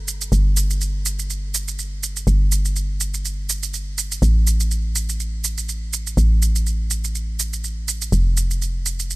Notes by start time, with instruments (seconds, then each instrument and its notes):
Already playing: fm bass G1
0.08 shaker
0.21 shaker
0.32 fm bass G1, shaker
0.57 shaker
0.70 shaker
0.81 shaker
1.06 shaker
1.19 shaker
1.30 shaker
1.54 shaker
1.68 shaker
1.79 shaker
2.03 shaker
2.16 shaker
2.27 fm bass G1, shaker
2.52 shaker
2.65 shaker
2.76 shaker
3.00 shaker
3.14 shaker
3.25 shaker
3.49 shaker
3.63 shaker
3.74 shaker
3.98 shaker
4.12 shaker
4.22 fm bass A1, shaker
4.47 shaker
4.60 shaker
4.71 shaker
4.96 shaker
5.09 shaker
5.20 shaker
5.44 shaker
5.58 shaker
5.69 shaker
5.93 shaker
6.07 shaker
6.17 fm bass A1, shaker
6.42 shaker
6.55 shaker
6.66 shaker
6.91 shaker
7.04 shaker
7.15 shaker
7.39 shaker
7.53 shaker
7.64 shaker
7.88 shaker
8.02 shaker
8.12 fm bass F1, shaker
8.37 shaker
8.51 shaker
8.62 shaker
8.86 shaker
8.99 shaker
9.10 shaker